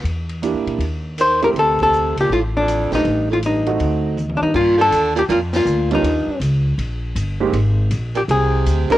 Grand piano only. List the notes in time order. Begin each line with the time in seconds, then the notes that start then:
0.42 A#3 D4 E4 G4
1.42 A3 C4 E4 G4
2.91 A3 C4 D#4 G4
3.67 A3 C4 D#4 F#4
5.91 G3 A#3 C#4 D#4 F4
7.41 G#3 A#3 C4 D#4 G4
8.90 A#3 C4 D4 D#4 G4